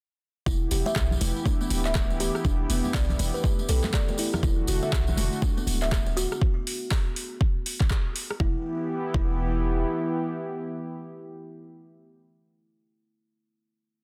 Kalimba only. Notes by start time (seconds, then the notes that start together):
0.47 E4
0.71 G4
0.86 E5
1.46 D4
1.61 B3
1.86 E5
2.20 G4
2.45 D4
2.70 B3
2.94 D5
3.34 B4
3.44 G4
3.69 A4
3.94 D5
4.19 E4
4.43 E4
4.68 F#4
4.83 E5
5.42 D4
5.57 B3
5.82 E5
6.17 F#4
8.40 E4
9.14 E4